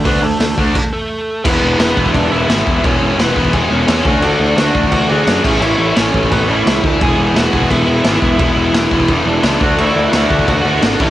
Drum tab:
CC |--------x-------|x---x---x---x---|x---x---x---x---|x---x---x---x-x-|
HH |o---o-----------|----------------|----------------|----------------|
SD |----o-----------|----o-------o---|----o-------o---|----o-------o---|
BD |o-----o-o-------|o-----ooo-----o-|o-----ooo-----o-|------ooo-----o-|

CC |x---x---x---x---|x---x---x---x---|x---x---x---x---|x---x---x---x-x-|
HH |----------------|----------------|----------------|----------------|
SD |----o-------o---|----o-------o---|----o-------o---|----o-------o---|
BD |------ooo-----o-|o-----ooo-----o-|o-----ooo-----o-|------ooo-----o-|